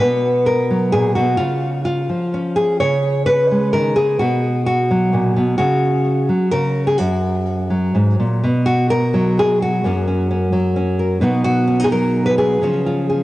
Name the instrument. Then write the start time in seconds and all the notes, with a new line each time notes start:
nylon-string guitar
0.00 B2 B4
0.46 A#4
0.70 F#3
0.92 A#2 G#4
1.15 B2 F#4
1.37 C#3 F4
1.85 F4
2.09 F3
2.34 C#4
2.56 G#4
2.80 C#3 C#5
3.26 B4
3.51 G#3
3.73 D#3 A#4
3.96 C#3 G#4
4.19 B2 F#4
4.66 F#4
4.91 F#3
5.13 A#2
5.36 B2
5.58 C#3 F#4
6.29 F#3
6.51 C#3 A#4
6.87 G#4
6.98 F#2 F#4
7.70 F#3
7.95 G#2
8.20 A#2
8.44 B2
8.66 F#4
8.90 A#4
9.14 F#3
9.39 G#4
9.62 F#4
9.84 F#2 F#3 A#3 C#4
10.07 C#4
10.31 C#4
10.52 F#3
10.76 C#4
10.99 A#4
11.21 B2 F#3 B3 D#4 F#4
11.44 F#4
11.67 C#4
11.80 D#4
11.84 G#4
11.91 F#3 A#4
12.26 B4
12.38 G#4
12.61 C#3 F3 C#4 F4
12.86 F4
13.10 G#4